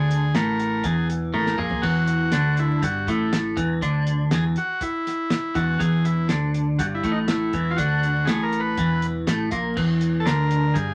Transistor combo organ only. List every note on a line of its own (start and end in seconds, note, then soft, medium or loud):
0.00 0.36 G#4 loud
0.35 0.86 A#4 medium
0.85 1.08 G#4 medium
1.34 1.60 A#4 loud
1.58 1.84 G#4 medium
1.82 2.60 F#4 loud
2.59 2.84 E4 medium
2.84 3.09 F#4 medium
3.10 3.32 E4 medium
4.34 4.45 G#4 loud
4.57 4.83 F#4 medium
4.82 5.58 E4 medium
5.55 5.81 F#4 medium
5.80 6.06 G#4 loud
6.05 6.28 E4 medium
6.79 6.86 F#4 medium
6.95 7.13 E4 medium
7.12 7.19 D#4 medium
7.28 7.72 E4 medium
7.71 7.78 F4 medium
7.76 8.29 F#4 medium
8.25 8.44 G#4 medium
8.43 8.61 A#4 loud
8.60 9.07 B4 medium
10.20 10.27 A4 medium
10.26 10.77 A#4 loud
10.74 10.94 G#4 medium